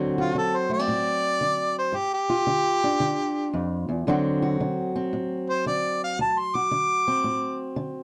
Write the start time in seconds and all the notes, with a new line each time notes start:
Already playing: D2 D3 F#3 C4 F#4
0.18 F4 F#4
0.35 D3 A4
0.57 C5
0.70 A3 D5
0.79 C4
0.88 A2
1.41 D3
1.78 C5
1.92 G2 G4
2.14 G4
2.30 F4
2.47 D3
2.84 D4
3.00 D3
3.53 F2
3.89 E2
4.07 D2 D3 F#3 C4 F#4
4.42 F#4
4.60 D3
4.96 C4
5.13 A2
5.50 C5
5.66 D3 D5
6.04 F5
6.19 D2 A5
6.39 C6
6.55 F#4 D6
6.71 D3
7.08 C4
7.24 A2
7.76 D3